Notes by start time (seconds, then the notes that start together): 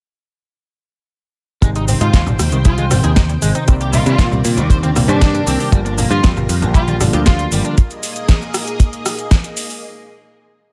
1.61 G#1 C3 D#3 G3 G#3 D#4 G4 C5 G5, kick, closed hi-hat, shaker
1.76 G#3 D#4, closed hi-hat, shaker
1.88 C4, open hi-hat, low conga, shaker
2.01 G#2 D#4 F4, closed hi-hat, shaker
2.13 D#2 G#3 G4, kick, snare, closed hi-hat, shaker
2.26 G#1 G3, low conga, shaker
2.39 D#2 G#3, cross-stick, open hi-hat, shaker
2.52 C2 D#3 C4, closed hi-hat, shaker
2.65 G3 F4 G#4, kick, closed hi-hat, shaker
2.78 G#3, closed hi-hat, high conga, shaker
2.90 G#1 C3 D#3 G3 C4, cross-stick, open hi-hat, low conga, shaker
3.03 D#2 D#4 G#4, closed hi-hat, shaker
3.16 D#4 G4, kick, snare, closed hi-hat, shaker
3.29 G3, closed hi-hat, shaker
3.42 G#1 G#3, open hi-hat, high conga, shaker
3.55 C4 D#4, closed hi-hat, shaker
3.66 C2 C3 D#3 G3 A#3 C4 A#4 D5, kick, closed hi-hat, shaker
3.81 A#3 G4, closed hi-hat, shaker
3.93 C4 D#4 F4, open hi-hat, low conga, shaker
4.05 C3 D4 F4, closed hi-hat, shaker
4.18 A#2 C4 D#4, kick, snare, closed hi-hat, shaker
4.32 C2 G3, low conga, shaker
4.44 A#2 A#3, open hi-hat, shaker
4.57 D#2 G3 C4, closed hi-hat, shaker
4.70 G3 C5, kick, closed hi-hat, shaker
4.83 A#3 C4, closed hi-hat, high conga, shaker
4.95 C2 C3 D#3 G3 A#3 C4, cross-stick, open hi-hat, low conga, shaker
5.08 G2 D4 C5, closed hi-hat, shaker
5.21 D#4 G4, kick, snare, closed hi-hat, shaker
5.34 G3, closed hi-hat, shaker
5.46 C2 A#3 C4, open hi-hat, high conga, shaker
5.60 C4 G4, open hi-hat, shaker
5.72 G1 D3 F3 G3 A#3 F4, kick, closed hi-hat, shaker
5.85 A#3 D4, closed hi-hat, shaker
5.98 A#3 D4, open hi-hat, low conga, shaker
6.10 G2 F4, closed hi-hat, shaker
6.23 F2 G3 G4, kick, snare, closed hi-hat, shaker
6.36 G1 G3, low conga, shaker
6.49 F2 A#3, open hi-hat, shaker
6.62 A#1 D3 D4, closed hi-hat, shaker
6.74 G3 F4 G4, kick, closed hi-hat, shaker
6.87 G3 A#3, closed hi-hat, high conga, shaker
7.00 G1 D3 F3 G3 A#3 D4, cross-stick, open hi-hat, low conga, shaker
7.13 D2 F4 G4, closed hi-hat, shaker
7.26 D4 F4 G4, kick, snare, closed hi-hat, shaker
7.39 G3, closed hi-hat, shaker
7.51 G1 G3 A#3, open hi-hat, high conga, shaker
7.65 D4, closed hi-hat, shaker
7.78 A#3 G#4 D#5, kick, closed hi-hat, shaker
7.91 closed hi-hat, shaker
8.03 open hi-hat, shaker
8.16 closed hi-hat, shaker
8.29 kick, snare, closed hi-hat, shaker
8.42 shaker
8.54 cross-stick, open hi-hat, shaker
8.68 closed hi-hat, shaker
8.80 kick, closed hi-hat, shaker
8.93 closed hi-hat, shaker
9.06 cross-stick, open hi-hat, shaker
9.19 closed hi-hat, shaker
9.31 kick, snare, closed hi-hat, shaker
9.44 closed hi-hat, shaker
9.57 open hi-hat, shaker
9.70 open hi-hat, shaker